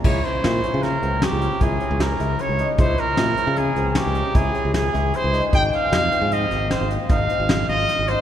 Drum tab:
CC |x-------------|--------------|--------------|
HH |-xxxxxxxxxxxxx|xxxxxxxxxxxxxx|xxxxxxxxxxxxxx|
SD |--o-o-o---o---|--o---o---oo-o|--o--oo---o-o-|
BD |o-------o-----|o-------o-----|o-------o-----|